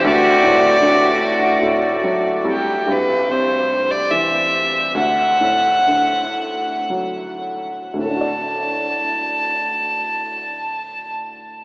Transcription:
0.03 D2 A3 F#4 D5
0.43 A2
0.82 D3 F#4
1.63 A2
2.04 F#3
2.45 C2
2.51 G4
2.87 G2
2.92 B4
3.29 C3 C5
3.91 D5
4.11 E3 E5
4.94 D2 F#5
5.41 A2
5.87 D3
6.90 F#3
7.94 D2
7.99 A2
8.04 A3 A5
8.10 D4
8.16 F#4
8.21 D5

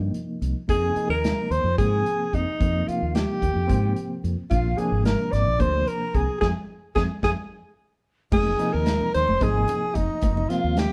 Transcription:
Already playing: C3 F3 A#3 D#4
0.14 closed hi-hat
0.42 C2, closed hi-hat
0.68 F2 C3 F3 A#3 D#4 G#4 G#5, kick, closed hi-hat
0.96 C3 F3 A#3 D#4, muted fretless electric bass stroke, closed hi-hat
1.09 D#2 A#4 A#5
1.24 snare, closed hi-hat
1.50 D#2 C5 C6, closed hi-hat
1.64 F2
1.78 G#2 C3 F3 A#3 C4 G#4 G#5, kick, closed hi-hat
2.06 closed hi-hat
2.33 F2 D#4 D#5, kick, closed hi-hat
2.60 F2 C3 F3 A#3 C4, kick, closed hi-hat
2.87 C3 F3 A#3 D#4 F4 F5, muted fretless electric bass stroke, closed hi-hat
3.02 D#2
3.15 G4 G5, snare, closed hi-hat
3.42 D#2, kick, closed hi-hat
3.56 F2
3.68 G#2 C3 F3 A#3 C4, kick, closed hi-hat
3.96 closed hi-hat
4.24 F2, closed hi-hat
4.50 A#1 C3 F3 A#3 D4 F4 F5, kick, closed hi-hat
4.77 C3 F3 A#3 D4 G#4 G#5, muted fretless electric bass stroke, closed hi-hat
4.92 G#1
5.05 A#4 A#5, snare, closed hi-hat
5.32 G#1 D5 D6, snare, closed hi-hat
5.47 A#1
5.58 D2 C3 F3 A#3 D4 C5 C6, kick, closed hi-hat
5.87 A#4 A#5, closed hi-hat
6.14 C2 G#4 G#5, kick, closed hi-hat
6.40 F2 F3 G#3 C4 G#4 G#5, kick, snare
6.95 F2 F3 G#3 C4 G#4 G#5, kick, snare
7.23 F2 F3 G#3 C4 G#4 G#5, kick, snare
8.32 F1 C3 F3 A#3 D#4 G#4 G#5, kick, crash, high conga
8.46 low conga
8.59 C3 F3 A#3 D#4, closed hi-hat
8.73 D#2 A#4 A#5
8.86 snare, closed hi-hat
9.01 low conga
9.14 D#2 C5 C6, snare, closed hi-hat
9.28 F1, high conga, low conga
9.41 G#1 C3 F3 A#3 D#4 G#4 G#5, kick, closed hi-hat
9.68 closed hi-hat, low conga
9.95 F1 D#4 D#5, kick, closed hi-hat
10.10 low conga
10.21 F1 C3 F3 A#3 D#4, kick, closed hi-hat, high conga
10.37 low conga
10.49 C3 F3 A#3 C4 F4 F5, snare, closed hi-hat
10.64 D#2
10.77 G4 G5, snare, closed hi-hat

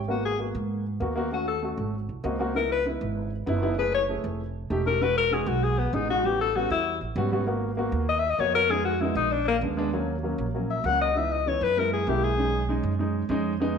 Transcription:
Already playing: G#1
0.08 A#3 B3 F#4
0.25 G#4
0.39 A#3 B3 F#4
0.55 G#2
1.00 D#2 A#3 B3 F#4
1.16 A#3 B3 F#4
1.32 A3 C#4 F#4
1.48 A4
1.62 A3 C#4 F#4
1.78 G#1
2.09 C2
2.24 C#2 A#3 C4 F#4 D#5
2.39 A#3 C4 F#4 F#5
2.54 B3 D#4 E4 A#4
2.72 B4
2.85 B3 D#4 E4
3.01 G#1
3.46 F#1 B3 D#4 E4
3.62 B3 D#4 E4
3.78 A3 E4 G#4 B4
3.94 C#5
4.09 A3 E4 G#4
4.24 F1
4.70 E1 A3 D#4 G4
4.85 A3 D#4 G4 A#4
5.01 G#3 D#4 F#4 B4
5.17 A#4
5.31 G#3 D#4 F#4 G#4
5.46 B1 F#4
5.64 G#4
5.79 B3
5.93 A1 G#3 D#4 G#4
6.09 G#3 D#4 F#4
6.24 G3 B3 C#4 F#4 G4
6.41 A4
6.56 G3 B3 C#4 F#4
6.70 E2 E4
7.01 A1
7.16 G#1 G3 B3 C#4 F#4
7.32 G3 B3 C#4 F#4
7.47 A#3 B3 F#4
7.77 A#3 B3 F#4
7.92 D#2
8.09 D#5
8.19 E5
8.30 D#5
8.38 F2 A#3 B3 F#4 C#5
8.54 A#3 B3 F#4 A#4
8.70 G#3 B3 D#4 G#4
8.85 F#4
9.01 G#3 B3 D#4 E4
9.15 A#1 D#4
9.32 D4
9.48 A#3
9.61 D#2 G#3 B3 D4
9.77 G#3 B3 D4
9.93 F#3 A#3 C#4
10.23 F#3 A#3 C#4
10.38 A#1
10.54 F#3 A#3 C#4
10.70 E5
10.84 C#2 F#3 A#3 C#4 F#5
11.01 D#5
11.15 E3 B3 D#4 E5
11.32 D#5
11.46 E3 B3 D#4 C#5
11.61 F#2 B4
11.77 G#3 A#3 E4 A#4
11.93 G#4
12.07 B1 G#3 A#3 E4 G4
12.23 G#4
12.38 G#3 C#4 D#4
12.69 G#3 C#4 D#4
12.83 F#2
12.99 G#3 C#4 D#4
13.29 F2 G#3 C#4 D#4
13.60 G#3 B3 D#4

